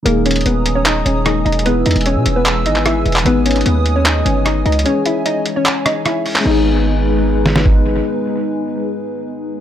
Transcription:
0.03 0.44 D#1 loud
0.03 1.22 D#3 medium
0.03 1.22 G#3 medium
0.03 0.21 A#3 medium
0.03 1.24 D#4 medium
0.03 0.21 A#4 loud
0.03 6.42 G#5 medium
0.03 1.64 A#5 medium
0.03 1.64 D#6 medium
0.03 closed hi-hat medium
0.08 1.24 G#4 medium
0.26 0.41 C#4 medium
0.26 0.41 C#5 medium
0.26 closed hi-hat medium
0.31 closed hi-hat medium
0.36 closed hi-hat medium
0.41 closed hi-hat soft
0.46 1.03 D#1 loud
0.46 0.74 B3 medium
0.46 0.74 B4 medium
0.46 closed hi-hat medium
0.66 closed hi-hat medium
0.75 0.84 C#4 medium
0.75 0.83 C#5 medium
0.86 1.02 D#4 medium
0.86 1.01 D#5 medium
0.86 clap loud
0.86 closed hi-hat medium
1.06 1.44 D#1 loud
1.06 1.21 C#4 medium
1.06 1.21 C#5 medium
1.06 closed hi-hat medium
1.24 1.65 D#3 soft
1.24 1.63 G#3 soft
1.24 1.66 A#3 soft
1.24 1.66 D#4 soft
1.24 1.42 D#4 medium
1.24 1.66 G#4 medium
1.24 1.41 D#5 medium
1.24 cross-stick medium
1.24 closed hi-hat medium
1.45 1.84 E1 loud
1.45 1.61 D#4 medium
1.45 1.61 D#5 medium
1.45 closed hi-hat soft
1.52 closed hi-hat medium
1.59 closed hi-hat medium
1.63 3.21 E3 medium
1.63 3.22 G#3 medium
1.63 3.22 B3 medium
1.63 1.82 B3 medium
1.63 3.23 E4 medium
1.63 4.83 B4 medium
1.63 1.81 B4 loud
1.63 3.24 E6 medium
1.63 closed hi-hat medium
1.68 3.24 G#4 medium
1.86 1.95 E2 loud
1.86 2.02 D#4 medium
1.86 2.01 D#5 medium
1.86 closed hi-hat medium
1.91 closed hi-hat medium
1.96 2.17 E1 loud
1.96 closed hi-hat medium
2.01 closed hi-hat soft
2.06 2.34 C#4 medium
2.06 2.34 C#5 medium
2.06 closed hi-hat medium
2.16 2.25 B2 loud
2.26 2.67 E1 loud
2.26 closed hi-hat medium
2.36 2.65 B3 medium
2.36 2.64 B4 medium
2.46 clap loud
2.46 closed hi-hat medium
2.66 3.04 G#1 loud
2.66 2.82 D#4 medium
2.66 2.81 D#5 medium
2.66 closed hi-hat medium
2.76 clap medium
2.86 3.24 E4 medium
2.86 3.23 E5 medium
2.86 cross-stick medium
2.86 closed hi-hat medium
3.06 3.25 E1 loud
3.06 closed hi-hat soft
3.06 open hi-hat medium
3.12 clap loud
3.12 closed hi-hat medium
3.19 4.81 D#3 medium
3.19 closed hi-hat medium
3.24 3.64 G#1 loud
3.24 4.82 G#3 medium
3.24 4.82 B3 medium
3.24 3.42 B3 medium
3.24 4.83 D#4 medium
3.24 4.84 G#4 medium
3.24 3.41 B4 loud
3.24 4.84 D#6 medium
3.24 closed hi-hat medium
3.46 3.62 C#4 medium
3.46 3.61 C#5 medium
3.46 closed hi-hat medium
3.51 closed hi-hat medium
3.56 closed hi-hat medium
3.61 closed hi-hat soft
3.66 4.23 D#2 loud
3.66 3.94 B3 medium
3.66 3.94 B4 medium
3.66 closed hi-hat medium
3.86 closed hi-hat medium
3.96 4.04 C#4 medium
3.96 4.03 C#5 medium
4.06 4.22 D#4 medium
4.06 4.21 D#5 medium
4.06 clap loud
4.06 closed hi-hat medium
4.25 4.64 G1 loud
4.25 4.41 C#4 medium
4.25 4.41 C#5 medium
4.25 closed hi-hat medium
4.46 4.62 D#4 medium
4.46 4.61 D#5 medium
4.46 cross-stick medium
4.46 closed hi-hat medium
4.65 4.85 C#2 loud
4.65 4.81 D#4 medium
4.65 4.81 D#5 medium
4.65 closed hi-hat soft
4.72 closed hi-hat medium
4.79 closed hi-hat medium
4.83 6.41 E3 medium
4.83 6.40 G#3 medium
4.83 6.42 C#4 medium
4.83 5.01 C#4 medium
4.83 5.01 C#5 medium
4.83 6.44 C#5 medium
4.83 closed hi-hat medium
4.88 6.44 G#4 medium
5.06 5.22 E4 medium
5.06 5.21 E5 medium
5.06 closed hi-hat medium
5.26 5.54 D#4 medium
5.26 5.54 D#5 medium
5.26 closed hi-hat medium
5.46 closed hi-hat medium
5.56 5.85 C#4 medium
5.56 5.84 C#5 medium
5.66 clap loud
5.66 closed hi-hat medium
5.86 6.02 D#4 medium
5.86 6.01 D#5 medium
5.86 cross-stick loud
5.86 closed hi-hat medium
6.06 6.44 E4 medium
6.06 6.43 E5 medium
6.06 cross-stick medium
6.06 closed hi-hat medium
6.26 open hi-hat medium
6.36 clap loud
6.41 9.61 G#3 medium
6.41 9.61 B3 medium
6.46 8.02 G#1 loud
6.46 9.61 G#3 medium
6.46 7.62 D#4 medium
6.46 9.61 D#4 medium
6.46 9.61 B4 medium
6.46 crash medium
6.51 9.61 G#4 medium
7.46 snare medium
7.56 snare medium
7.66 kick medium

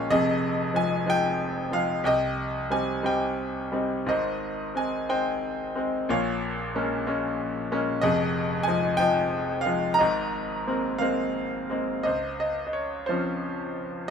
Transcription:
0.00 0.12 A#1 medium
0.00 0.11 A#2 medium
0.00 0.12 G#3 medium
0.00 0.12 A#3 soft
0.00 0.12 C#4 medium
0.00 0.11 C#5 medium
0.00 0.12 F5 medium
0.00 0.12 G5 medium
0.00 0.12 G#5 medium
0.10 2.01 F1 medium
0.10 2.01 F2 medium
0.10 1.04 G#4 medium
0.10 0.77 D#5 loud
0.74 1.05 F3 soft
0.74 1.05 G#3 soft
0.74 1.06 D#4 soft
0.74 1.09 G#5 medium
1.06 1.70 F3 medium
1.06 1.70 G#3 soft
1.06 1.71 D#4 medium
1.06 1.76 G5 loud
1.71 2.03 F3 soft
1.71 2.04 G#3 soft
1.71 2.04 D#4 medium
1.71 2.03 F5 medium
2.04 4.03 C2 medium
2.04 2.74 D#5 medium
2.04 3.01 G5 medium
2.70 3.02 G3 soft
2.70 3.02 C4 soft
2.70 3.03 D#4 soft
2.70 3.06 G#5 medium
3.03 3.70 G3 soft
3.03 3.71 C4 soft
3.03 3.71 D#4 medium
3.03 3.78 G5 medium
3.72 4.06 G3 soft
3.72 4.06 C4 soft
3.72 4.06 D#4 medium
4.06 6.05 G#1 medium
4.06 6.05 G#2 medium
4.06 5.06 C5 medium
4.06 4.72 D#5 medium
4.75 5.07 G#3 soft
4.75 5.08 C4 soft
4.75 5.08 D#4 medium
4.75 5.11 G#5 medium
5.09 5.74 G#3 soft
5.09 5.74 C4 soft
5.09 5.74 D#4 medium
5.09 6.05 C5 medium
5.09 6.13 G5 medium
5.75 6.08 G#3 medium
5.75 6.08 C4 soft
5.75 6.09 D#4 medium
6.09 8.00 A#1 medium
6.09 8.00 A#2 medium
6.09 7.04 C#5 medium
6.09 7.04 F5 medium
6.75 7.05 G#3 soft
6.75 7.05 A#3 soft
6.75 7.06 C#4 medium
7.06 7.69 G#3 medium
7.06 7.70 A#3 soft
7.06 7.70 C#4 medium
7.72 8.03 G#3 medium
7.72 8.03 A#3 medium
7.72 8.03 C#4 medium
8.01 9.95 F1 medium
8.01 9.95 F2 medium
8.01 8.96 G#4 medium
8.01 8.69 D#5 medium
8.63 8.99 G#5 loud
8.68 8.98 F3 medium
8.68 8.99 G#3 medium
8.68 8.99 D#4 medium
8.97 9.64 F3 medium
8.97 9.64 G#3 medium
8.97 9.64 D#4 medium
8.97 9.66 G5 loud
9.61 9.98 F5 medium
9.66 9.98 F3 soft
9.66 9.99 G#3 medium
9.66 9.99 D#4 medium
9.94 11.29 A#5 loud
9.99 12.02 G#1 medium
9.99 12.02 G#2 medium
9.99 11.32 D#5 medium
10.67 10.99 G#3 soft
10.67 11.00 A#3 soft
10.67 11.00 C4 medium
10.98 11.68 G#3 soft
10.98 11.68 A#3 soft
10.98 11.69 C4 medium
10.98 11.65 F5 medium
11.69 12.04 G#3 soft
11.69 12.05 A#3 soft
11.69 12.05 C4 soft
12.03 14.05 C#2 medium
12.03 13.05 C5 medium
12.03 12.38 D#5 medium
12.40 12.65 D#5 medium
12.67 12.74 D#5 soft
12.73 13.10 C#5 medium
13.06 14.06 F3 soft
13.06 14.06 C4 soft
13.06 14.06 C#4 soft
13.06 14.05 F4 soft
13.06 14.10 C5 medium

